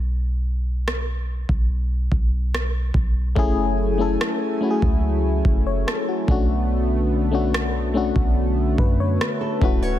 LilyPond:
<<
  \new Staff \with { instrumentName = "Nylon-string guitar" } { \time 4/4 \key b \dorian \tempo 4 = 72 r1 | r1 | r2. r16 a'16 b'16 cis''16 | }
  \new Staff \with { instrumentName = "FM electric piano" } { \time 4/4 \key b \dorian << { r1 | r2 r8. cis''16 a'16 fis'8 r16 | r2 r8 b'16 cis''16 b'16 a'8 r16 | } \\ { r1 | <a cis' e' gis'>8. <a cis' e' a'>8. <a cis' e' fis' gis'>4.~ <a cis' e' fis' gis'>16 r16 <a cis' d' fis'>8~ | <a cis' d' fis'>8. <a cis' d' fis'>8. <a cis' d' fis'>4 r4 <a cis' e' fis'>8 | } >> }
  \new Staff \with { instrumentName = "Analog synth pad" } { \time 4/4 \key b \dorian r1 | <fis a cis' e' gis''>2.~ <fis a cis' e' gis''>8 <d a b>8~ | <d a b>2.~ <d a b>8 <d cis' e' fis'>8 | }
  \new Staff \with { instrumentName = "808-style bass" } { \clef bass \time 4/4 \key b \dorian b,,4.~ b,,16 b,,8. b,,4 b,,8 | fis,,4 r8. cis,8. fis,,8 r8 b,,8~ | b,,4.~ b,,16 b,,8. fis,8 r8 d,,8 | }
  \new DrumStaff \with { instrumentName = "Drums" } \drummode { \time 4/4 r4 ss8. bd16 r8 bd8 ss8 bd8 | bd4 ss8. bd16 r8 bd8 ss8 bd8 | r4 ss8. bd16 r8 bd8 ss8 bd8 | }
>>